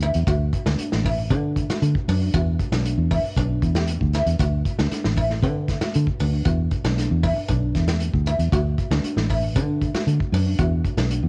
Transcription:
Already playing: fingered electric bass D2
0.00 guzheng E4, closed hi-hat
0.14 fingered electric bass E2, closed hi-hat
0.27 fingered electric bass D2, guzheng F#4, kick, closed hi-hat
0.53 kick, closed hi-hat
0.66 fingered electric bass D2, guzheng D4, snare
0.79 muted fingered electric bass stroke, closed hi-hat
0.92 fingered electric bass A1, snare
1.05 guzheng E4, kick, open hi-hat
1.30 fingered electric bass D3, guzheng D4, kick, closed hi-hat
1.56 kick, closed hi-hat
1.70 guzheng F#4, muted fingered electric bass stroke, snare, closed hi-hat
1.82 fingered electric bass D3, closed hi-hat
1.95 kick
2.08 fingered electric bass F#2, guzheng D4, open hi-hat
2.34 fingered electric bass E2, guzheng F#4, kick, closed hi-hat
2.59 kick, closed hi-hat
2.72 fingered electric bass B1, guzheng D4, snare, closed hi-hat
2.86 closed hi-hat
2.98 fingered electric bass E2
3.11 guzheng E4, kick, open hi-hat
3.24 muted fingered electric bass stroke
3.36 fingered electric bass B1, guzheng D4, kick, closed hi-hat
3.62 fingered electric bass E2, kick, closed hi-hat
3.75 guzheng G4, snare, closed hi-hat
3.87 closed hi-hat
4.01 fingered electric bass D2, kick
4.13 guzheng E4, snare, closed hi-hat
4.26 fingered electric bass E2, closed hi-hat
4.39 fingered electric bass D2, guzheng F#4, kick, closed hi-hat
4.65 kick, closed hi-hat
4.79 fingered electric bass D2, guzheng D4, snare
4.91 snare, closed hi-hat
5.04 fingered electric bass A1, snare
5.16 guzheng E4, kick, open hi-hat
5.30 snare
5.42 fingered electric bass D3, guzheng C4, kick, closed hi-hat
5.68 kick, snare, closed hi-hat
5.81 guzheng F#4, muted fingered electric bass stroke, snare, closed hi-hat
5.94 fingered electric bass D3, closed hi-hat
6.07 kick
6.20 fingered electric bass D2, guzheng D4, open hi-hat
6.45 fingered electric bass E2, guzheng F#4, kick, closed hi-hat
6.71 kick, closed hi-hat
6.84 fingered electric bass B1, guzheng D4, snare, closed hi-hat
6.98 snare, closed hi-hat
7.11 fingered electric bass E2
7.23 guzheng E4, kick, open hi-hat
7.37 muted fingered electric bass stroke
7.48 fingered electric bass B1, guzheng D4, kick, closed hi-hat
7.75 fingered electric bass E2, kick, snare, closed hi-hat
7.88 guzheng G4, snare, closed hi-hat
8.00 closed hi-hat
8.14 fingered electric bass D2, kick
8.26 guzheng E4, closed hi-hat
8.39 fingered electric bass E2, closed hi-hat
8.52 fingered electric bass D2, guzheng F#4, kick, closed hi-hat
8.78 kick, closed hi-hat
8.91 fingered electric bass D2, guzheng D4, snare
9.04 muted fingered electric bass stroke, closed hi-hat
9.16 fingered electric bass A1, snare
9.30 guzheng E4, kick, open hi-hat
9.56 fingered electric bass D3, guzheng D4, kick, closed hi-hat
9.81 kick, closed hi-hat
9.94 guzheng F#4, muted fingered electric bass stroke, snare, closed hi-hat
10.07 fingered electric bass D3, closed hi-hat
10.20 kick
10.32 fingered electric bass F#2, guzheng D4, open hi-hat
10.59 fingered electric bass E2, guzheng F#4, kick, closed hi-hat
10.85 kick, closed hi-hat
10.97 fingered electric bass B1, guzheng D4, snare, closed hi-hat
11.11 closed hi-hat
11.23 fingered electric bass E2

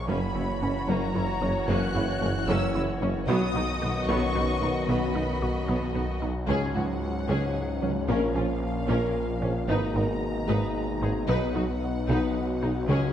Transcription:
Already playing: detuned saw bass A#1
0.08 tuba F#1, double bass section F#1, detuned saw bass F#1, cello section F#2, trombone section F#2 E3, synth pluck F#3, french horn section F#3 C#4, viola section A#3 C#4, violin section F#4 C#5 B5
0.34 tuba F#1, double bass section F#1, cello section F#2, synth pluck A#3, viola section C#4 E4
0.61 tuba F#1, double bass section F#1, cello section F#2, viola section C#4, synth pluck C#4
0.88 tuba F#1, double bass section F#1, cello section F#2, synth pluck F#3, viola section A#3 C#4, violin section A#5
1.14 tuba F#1, double bass section F#1, cello section F#2, viola section C#4 E4, synth pluck E4
1.41 tuba F#1, double bass section F#1, cello section F#2, synth pluck A#3, viola section C#4
1.68 tuba F#1, double bass section F#1, cello section F#2, synth pluck F#3, viola section A#3 C#4, violin section F#6
1.94 tuba F#1, double bass section F#1, cello section F#2, synth pluck A#3, viola section C#4 E4
2.21 tuba F#1, double bass section F#1, cello section F#2, viola section C#4, synth pluck C#4
2.48 tuba F#1, double bass section F#1, cello section F#2, synth pluck F#3, viola section A#3 C#4, violin section E6
2.74 tuba F#1, double bass section F#1, cello section F#2, viola section C#4 E4, synth pluck E4
3.01 tuba F#1, double bass section F#1, cello section F#2, synth pluck A#3, viola section C#4
3.28 tuba B1, detuned saw bass B1, double bass section B1, trombone section F#2 D#3, cello section B2, french horn section F#3 B3, viola section F#3 B3, synth pluck B3, violin section F#4 D#5 D#6
3.54 tuba B1, double bass section B1, cello section B2, viola section B3 D#4, synth pluck D#4
3.81 tuba B1, double bass section B1, cello section B2, viola section B3, synth pluck F#4
4.08 tuba B1, double bass section B1, cello section B2, viola section F#3 B3, synth pluck B3, violin section C#6
4.35 tuba B1, double bass section B1, cello section B2, viola section B3 D#4, synth pluck B4
4.61 tuba B1, double bass section B1, cello section B2, viola section B3, synth pluck D#4
4.88 tuba B1, double bass section B1, cello section B2, viola section F#3 B3, synth pluck B3, violin section B5
5.15 tuba B1, double bass section B1, cello section B2, viola section B3 D#4, synth pluck D#4
5.41 tuba B1, double bass section B1, cello section B2, viola section B3, synth pluck F#4
5.68 double bass section B1, tuba B1, cello section B2, viola section F#3 B3, synth pluck B3
5.95 double bass section B1, tuba B1, cello section B2, viola section B3 D#4, synth pluck B4
6.22 double bass section B1, tuba B1, cello section B2, viola section B3, synth pluck D#4
6.48 double bass section C#2, detuned saw bass C#2, tuba C#2, cello section C#2, trombone section G#2 F#3, synth pluck C#3, french horn section F#3 C#4, viola section C#4, violin section G#4 F#5
6.75 double bass section C#2, tuba C#2, cello section C#2, synth pluck F#3, viola section C#4, violin section F#4
7.28 tuba C#2, double bass section C#2, cello section C#2, synth pluck C#3, viola section C#4, violin section G#4
7.81 double bass section C#2, tuba C#2, cello section C#2, synth pluck F#3, violin section C#4, viola section C#4
8.08 detuned saw bass A#1, tuba A#1, double bass section A#1, trombone section A#2 F3, cello section A#2, synth pluck A#3, french horn section A#3, viola section C#4, violin section A#4 F5
8.35 tuba A#1, double bass section A#1, cello section A#2, viola section C#4, synth pluck C#4, violin section F4
8.88 tuba A#1, double bass section A#1, cello section A#2, synth pluck A#3, viola section C#4, violin section A#4
9.42 tuba A#1, double bass section A#1, cello section A#2, viola section C#4, synth pluck C#4, violin section C#4
9.68 tuba G#1, double bass section G#1, detuned saw bass G#1, cello section G#2, trombone section B2 G#3, synth pluck G#3, french horn section D#4, viola section D#4, violin section B4 A#5
9.95 double bass section G#1, tuba G#1, cello section G#2, synth pluck B3, viola section D#4, violin section A#4
10.48 tuba G#1, double bass section G#1, cello section G#2, synth pluck G#3, viola section D#4, violin section B4
11.02 double bass section G#1, tuba G#1, cello section G#2, synth pluck B3, viola section D#4, violin section G#4
11.28 double bass section B1, tuba B1, detuned saw bass B1, cello section B2, trombone section F#3, french horn section B3, synth pluck B3, viola section D#4, violin section B4 F#5
11.55 tuba B1, double bass section B1, cello section B2, viola section D#4, synth pluck D#4, violin section F#4
12.08 double bass section B1, tuba B1, cello section B2, synth pluck B3, viola section D#4, violin section B4
12.62 tuba B1, double bass section B1, cello section B2, viola section D#4, violin section D#4, synth pluck D#4
12.88 detuned saw bass C#2, double bass section C#2, tuba C#2, cello section C#3, trombone section C#3, synth pluck C#3, french horn section G#3, viola section C#4, violin section G#4 F#5

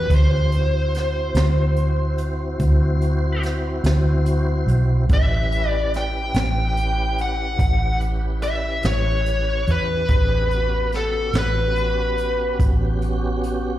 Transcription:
Already playing: lead electric guitar B4
0.10 fingered electric bass D2, tonewheel organ C#4 F4 G4 C5, kick, closed hi-hat
0.16 lead electric guitar C5
0.51 tonewheel organ C4 E4 F#4 C5, closed hi-hat
0.94 snare, closed hi-hat
1.35 fingered electric bass D2, snare, closed hi-hat
1.76 closed hi-hat
2.18 closed hi-hat
2.60 fingered electric bass D2, kick, closed hi-hat
3.01 closed hi-hat
3.43 snare, closed hi-hat
3.84 fingered electric bass D2, snare, closed hi-hat
4.26 closed hi-hat
4.67 fingered electric bass B1, closed hi-hat
5.09 fingered electric bass A1, tonewheel organ C#4 E4 G4 B4, kick, closed hi-hat
5.13 lead electric guitar E5
5.52 closed hi-hat
5.69 lead electric guitar D5
5.94 lead electric guitar G5, snare, closed hi-hat
6.34 fingered electric bass A1, snare, closed hi-hat
6.77 closed hi-hat
7.18 lead electric guitar F#5, closed hi-hat
7.59 fingered electric bass A1, kick, closed hi-hat
8.00 closed hi-hat
8.42 lead electric guitar E5, closed hi-hat
8.83 fingered electric bass A1, lead electric guitar C#5, snare, closed hi-hat
9.26 closed hi-hat
9.67 fingered electric bass E2, lead electric guitar B4, closed hi-hat
10.08 fingered electric bass A1, tonewheel organ C4 D4 G4 G#4, kick, closed hi-hat
10.51 tonewheel organ B3 C#4 F#4 G4, closed hi-hat
10.92 lead electric guitar A4, snare, closed hi-hat
11.33 fingered electric bass A1, snare, closed hi-hat
11.38 lead electric guitar B4
11.76 closed hi-hat
12.18 closed hi-hat
12.59 fingered electric bass A1, kick, closed hi-hat
13.02 closed hi-hat
13.44 closed hi-hat

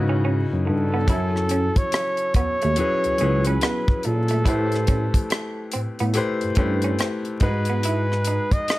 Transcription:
Already playing: tine electric piano G#2, grand piano C#3 C#4 D#4 E4 F#4 B4
0.09 clean electric guitar C#4
0.25 clean electric guitar C#4
0.53 tine electric piano F#2
0.67 tine electric piano G2, flugelhorn A4, muted clean electric guitar stroke
0.94 clean electric guitar B3
1.07 tine electric piano F#2, grand piano F#3 C#4 E4 A4 G#5, clean electric guitar E4, kick, closed hi-hat
1.36 cross-stick
1.49 clean electric guitar C#4, closed hi-hat
1.76 flugelhorn C#5, kick, closed hi-hat
1.92 muted clean electric guitar stroke, cross-stick, closed hi-hat
2.17 closed hi-hat
2.34 tine electric piano D#2, clean electric guitar B3, flugelhorn C#5, kick, closed hi-hat
2.62 tine electric piano D#2, clean electric guitar A3, closed hi-hat
2.76 grand piano F#3 C#4 E4 G#4 B4, muted clean electric guitar stroke, closed hi-hat
3.04 tine electric piano C#2, closed hi-hat
3.18 tine electric piano C#2, grand piano F#3 C#4 E4 G#4 B4, clean electric guitar C#4, closed hi-hat
3.45 clean electric guitar C#4, flugelhorn B4, closed hi-hat
3.61 clean electric guitar B3, cross-stick, closed hi-hat
3.88 kick
4.03 tine electric piano A#2, flugelhorn A4, muted clean electric guitar stroke, closed hi-hat
4.28 clean electric guitar A3, closed hi-hat
4.44 tine electric piano A2, grand piano A3 E4 G4 B4, clean electric guitar E4, kick, closed hi-hat
4.48 grand piano C5
4.72 cross-stick, closed hi-hat
4.87 clean electric guitar C#4, kick, closed hi-hat
5.14 kick, closed hi-hat
5.30 muted clean electric guitar stroke, cross-stick, closed hi-hat
5.72 tine electric piano A2, clean electric guitar C4, closed hi-hat
5.99 tine electric piano A2, clean electric guitar B3, closed hi-hat
6.14 grand piano A3 E4 G4 B4 C5, muted clean electric guitar stroke, closed hi-hat
6.41 tine electric piano G2, closed hi-hat
6.55 tine electric piano G2, grand piano A3 E4 G4 B4 C5, clean electric guitar C#4, kick, closed hi-hat
6.82 clean electric guitar C#4, closed hi-hat
6.99 clean electric guitar C4, cross-stick, closed hi-hat
7.25 closed hi-hat
7.40 tine electric piano G#2, grand piano G#3 D#4 F#4 G#4 B4, flugelhorn B4, muted clean electric guitar stroke, kick, closed hi-hat
7.65 closed hi-hat
7.70 clean electric guitar B3
7.83 clean electric guitar E4, closed hi-hat
8.12 cross-stick
8.25 clean electric guitar D#4, closed hi-hat
8.52 flugelhorn D#5, kick, closed hi-hat
8.68 muted clean electric guitar stroke, cross-stick, closed hi-hat

